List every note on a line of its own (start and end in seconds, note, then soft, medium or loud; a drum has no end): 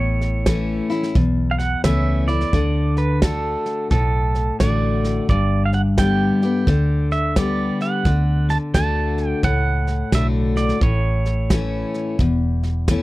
0.00 0.79 A1 medium
0.00 1.11 A2 medium
0.00 1.12 C#5 medium
0.21 snare soft
0.46 0.89 E3 medium
0.46 0.89 A3 medium
0.46 0.89 C#4 medium
0.46 0.89 E4 medium
0.46 kick medium
0.46 snare loud
0.46 hi-hat pedal medium
0.90 1.15 C#4 soft
0.90 1.14 E4 medium
0.90 snare soft
1.03 snare soft
1.15 1.74 B1 medium
1.15 2.49 E2 medium
1.15 kick loud
1.15 snare soft
1.51 1.60 F5 medium
1.58 1.82 F#5 medium
1.58 snare soft
1.84 2.43 C#2 medium
1.84 2.27 E3 medium
1.84 2.27 A3 medium
1.84 2.27 C#4 medium
1.84 2.27 E4 medium
1.84 2.30 E5 medium
1.84 kick medium
1.84 snare loud
1.84 hi-hat pedal medium
2.28 2.52 E4 soft
2.28 2.99 D5 medium
2.28 snare soft
2.41 snare soft
2.53 3.55 D2 medium
2.53 3.21 D3 medium
2.53 kick loud
2.53 snare soft
2.97 3.23 B4 medium
2.97 snare soft
3.22 3.89 D3 medium
3.22 3.89 A3 medium
3.22 3.90 D4 soft
3.22 3.90 F#4 medium
3.22 3.88 A4 medium
3.22 kick medium
3.22 snare loud
3.22 hi-hat pedal medium
3.66 snare soft
3.90 4.50 B1 medium
3.90 5.25 A2 medium
3.90 4.56 A4 medium
3.90 kick loud
3.90 snare soft
4.35 snare soft
4.60 5.19 A1 medium
4.60 5.27 D3 medium
4.60 5.27 A3 medium
4.60 5.28 D4 medium
4.60 5.28 F#4 medium
4.60 5.29 D5 medium
4.60 kick medium
4.60 snare medium
4.60 hi-hat pedal medium
5.04 snare soft
5.29 6.31 G1 medium
5.29 6.63 G2 medium
5.29 5.62 D5 medium
5.29 kick medium
5.29 snare soft
5.66 5.74 F5 medium
5.73 5.81 F#5 medium
5.73 snare soft
5.98 6.41 D3 soft
5.98 6.41 G3 medium
5.98 6.42 B3 medium
5.98 6.42 G4 medium
5.98 7.12 G5 medium
5.98 kick medium
5.98 snare loud
5.98 hi-hat pedal medium
6.42 6.67 B3 soft
6.42 6.67 G4 medium
6.42 snare soft
6.67 7.69 D2 medium
6.67 7.35 D3 medium
6.67 kick loud
6.67 snare soft
7.11 7.38 E5 medium
7.11 snare soft
7.36 8.03 D3 medium
7.36 8.03 G3 soft
7.36 8.04 B3 medium
7.36 8.04 G4 medium
7.36 7.83 D5 medium
7.36 kick medium
7.36 snare loud
7.36 hi-hat pedal medium
7.81 8.52 F#5 medium
7.81 snare soft
8.05 8.56 D2 medium
8.05 8.73 D3 medium
8.05 kick loud
8.05 snare soft
8.49 8.57 A5 medium
8.49 snare soft
8.74 9.33 D2 medium
8.74 9.41 D3 medium
8.74 9.41 A3 medium
8.74 9.42 D4 medium
8.74 9.42 F#4 medium
8.74 9.28 A5 loud
8.74 kick medium
8.74 snare loud
8.74 hi-hat pedal medium
9.18 snare soft
9.28 9.44 G5 loud
9.43 10.02 C#2 medium
9.43 10.76 A2 medium
9.43 10.15 F#5 medium
9.43 kick loud
9.43 snare soft
9.87 snare soft
10.12 10.71 B1 medium
10.12 10.79 D3 medium
10.12 10.79 A3 medium
10.12 10.79 D4 medium
10.12 10.80 F#4 medium
10.12 10.26 E5 medium
10.12 kick medium
10.12 snare medium
10.12 hi-hat pedal medium
10.56 10.82 D5 medium
10.56 snare soft
10.69 snare soft
10.81 11.83 A1 medium
10.81 12.15 A2 medium
10.81 12.16 C#5 medium
10.81 kick loud
10.81 snare soft
11.25 snare soft
11.50 12.17 E3 medium
11.50 12.17 A3 medium
11.50 12.18 C#4 medium
11.50 12.18 E4 medium
11.50 kick medium
11.50 snare loud
11.50 hi-hat pedal medium
11.94 snare soft
12.19 13.03 E1 medium
12.19 13.03 E2 medium
12.19 kick loud
12.19 snare soft
12.63 snare soft
12.88 13.03 E3 medium
12.88 13.03 A3 medium
12.88 13.03 C#4 medium
12.88 13.03 E4 medium
12.88 kick medium
12.88 snare loud
12.88 hi-hat pedal medium